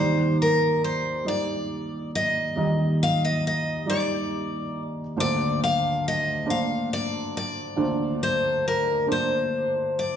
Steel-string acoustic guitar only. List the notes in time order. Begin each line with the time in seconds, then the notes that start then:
Already playing: C5
0.42 A#4
0.84 C5
1.28 D5
2.15 D#5
3.03 F5
3.25 D#5
3.47 D#5
3.90 D5
5.20 D5
5.64 F5
6.08 D#5
6.50 F5
6.93 D5
7.37 D5
8.23 C5
8.68 A#4
9.12 C5
9.99 D5